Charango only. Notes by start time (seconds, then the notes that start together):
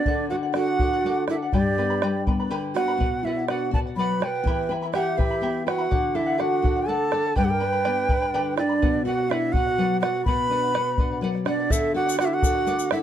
0.07 A4 D5 F#5
0.30 A4 D5 F#5
0.43 D5 F#5
0.56 A4 D5 F#5
0.80 A4 D5 F#5
0.93 D5 F#5
1.06 A4 D5 F#5
1.30 A4 D5 F#5
1.42 D5 F#5
1.53 G4 B4 D5 G5 B5
1.78 B4 D5 G5 B5
1.90 B4 D5 B5
2.02 G4 B4 D5 G5 B5
2.27 B4 D5 G5 B5
2.40 B4 D5 B5
2.51 G4 B4 D5 G5 B5
2.76 B4 D5 G5 B5
2.88 B4 D5 B5
3.00 B4 D5 F#5
3.26 B4 D5 F#5
3.38 D5 F#5
3.50 B4 D5 F#5
3.74 B4 D5 F#5
3.87 D5 F#5
3.99 B4 D5 F#5
4.23 B4 D5 F#5
4.35 D5 F#5
4.47 E4 G4 E5 G5 B5
4.71 E4 E5 G5 B5
4.82 E4 E5 B5
4.95 E4 G4 E5 G5 B5
5.19 E4 E5 G5 B5
5.31 E4 E5 B5
5.42 E4 G4 E5 G5 B5
5.67 E4 E5 G5 B5
5.78 E4 E5 B5
5.91 A4 D5 F#5
6.15 A4 D5 F#5
6.26 D5 F#5
6.38 A4 D5 F#5
6.64 A4 D5 F#5
6.76 D5 F#5
6.88 A4 D5 F#5
7.11 A4 D5 F#5
7.25 D5 F#5
7.35 G4 B4 D5 G5 B5
7.60 B4 D5 G5 B5
7.72 B4 D5 B5
7.85 G4 B4 D5 G5 B5
8.09 B4 D5 G5 B5
8.22 B4 D5 B5
8.34 G4 B4 D5 G5 B5
8.58 B4 D5 G5 B5
8.69 B4 D5 B5
8.82 B4 D5 F#5
9.07 B4 D5 F#5
9.19 D5 F#5
9.31 B4 D5 F#5
9.55 B4 D5 F#5
9.67 D5 F#5
9.78 B4 D5 F#5
10.02 B4 D5 F#5
10.14 D5 F#5
10.28 B4 D5 F#5
10.50 B4 D5 F#5
10.62 D5 F#5
10.74 B4 D5 F#5
10.99 B4 D5 F#5
11.11 D5 F#5
11.22 B4 D5 F#5
11.46 B4 D5 F#5
11.59 D5 F#5
11.70 A4 D5 F#5
11.95 A4 D5 F#5
12.07 D5 F#5
12.19 A4 D5 F#5
12.42 A4 D5 F#5
12.55 D5 F#5
12.66 A4 D5 F#5
12.91 A4 D5 F#5